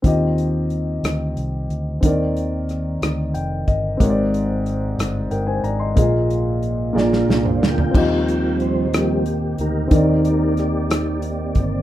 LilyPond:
<<
  \new Staff \with { instrumentName = "Grand piano" } { \time 6/8 \key ees \major \tempo 4. = 61 << { r2. | r2 g''8 ees''8 | r2 <bes' g''>16 <c'' aes''>16 <d'' bes''>16 <ees'' c'''>16~ | <ees'' c'''>16 r2 r8. |
r2. | r2. | } \\ { <c' f' g' ees''>2. | <c' ees' bes' d''>2. | <c' g' bes' des'' d''>2. | <bes f' aes' ees''>4. <bes f' aes' d''>4. |
<c' f' g' ees''>2. | <c' ees' bes' d''>2. | } >> }
  \new Staff \with { instrumentName = "Grand piano" } { \clef bass \time 6/8 \key ees \major ees4. r4. | ees4. r4. | aes,4. r4. | bes,4. bes,4. |
ees4. r4. | ees4. r4. | }
  \new Staff \with { instrumentName = "Tonewheel organ" } { \time 6/8 \key ees \major << { r2. | r2. | r2. | r4. bes'8. c''16 bes'8~ |
bes'4 c''8 g'4 bes'8~ | bes'4 g'8 g'4 r8 | } \\ { r2. | r2. | r2. | r4. <d' f'>4 <f' g''>8~ |
<f' g''>4 r8 <bes c'>4 <ees' g'>8~ | <ees' g'>4 r8 c'4. | } >> }
  \new Staff \with { instrumentName = "Tonewheel organ" } { \clef bass \time 6/8 \key ees \major r2. | r2. | r2. | r2. |
<f g c'>4. <f g>8 r4 | <ees bes d''>4. <ees bes ees'>8 r4 | }
  \new Staff \with { instrumentName = "Fingered electric bass" } { \clef bass \time 6/8 \key ees \major ees,4. d,8 c,8 d,8 | ees,4. d,8 f,,8 g,,8 | aes,,4. g,,8 g,,8 aes,,8 | bes,,4. bes,,8 c,8 d,8 |
ees,2~ ees,8 d,8 | ees,2~ ees,8 g,,8 | }
  \new DrumStaff \with { instrumentName = "Drums" } \drummode { \time 6/8 <hh bd>8 hh8 hh8 <hh ss>8 hh8 hh8 | <hh bd>8 hh8 <hh ss>8 <hh ss>8 hh8 <hh bd>8 | <hh bd>8 hh8 hh8 <hh ss>8 hh8 hh8 | <hh bd>8 hh8 hh8 sn16 sn16 sn16 toml16 sn16 tomfh16 |
<cymc bd>8 hh8 hh8 <hh ss>8 hh8 hh8 | <hh bd>8 hh8 <hh ss>8 <hh ss>8 hh8 <hh bd>8 | }
>>